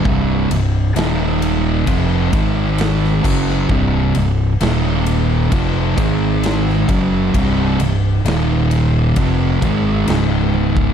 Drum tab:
CC |--------------x-|----------------|----------------|
RD |--x-x-x-x-x-x---|--x-x-x-x-x-x-x-|x-x-x-x-x-x-x---|
SD |----o-------oo-o|----o-------oo--|----o-------o---|
T1 |----------------|----------------|--------------o-|
BD |o-------o-o---o-|o-------o-o---o-|o-------o-o----o|